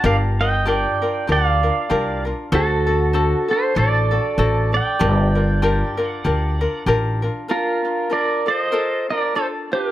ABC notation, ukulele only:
X:1
M:4/4
L:1/8
Q:"Swing" 1/4=97
K:Gm
V:1 name="Ukulele"
[DFGB] [FB] [DFGB] [DFB] [DFGB] [DFB] [DFGB] [DFB] | [D^FAc] [DFA] [DFAc] [DFA] [DFAc] [DFA] [DFAc] A | [DFGB] [DFB] [DFGB] [DFB] [DFGB] [DFB] [DFGB] [DFB] | [K:Bb] [DFB] [DF] [DFB] [FA] [FAB] [DF] [DFA] [DF] |]